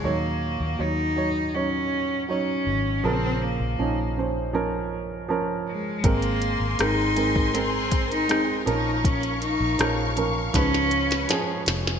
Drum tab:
HH |----------------|----------------|xxx-x-x-x-xxx-x-|xxx-x-x-x-xxx-x-|
SD |----------------|----------------|----r-------r---|----r---oo-oo-oo|
BD |----------------|----------------|o------o--o-----|o-------o-------|